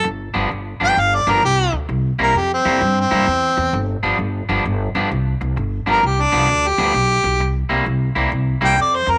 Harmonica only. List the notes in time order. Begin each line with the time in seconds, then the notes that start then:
0.84 G5
1.00 F5
1.15 D5
1.30 A#4
1.45 G4
2.23 A#4
2.38 G4
2.54 C4
3.01 C4
5.91 A#4
6.06 G4
6.22 D4
6.68 G4
8.65 G5
8.82 D5
8.95 C5
9.11 A#4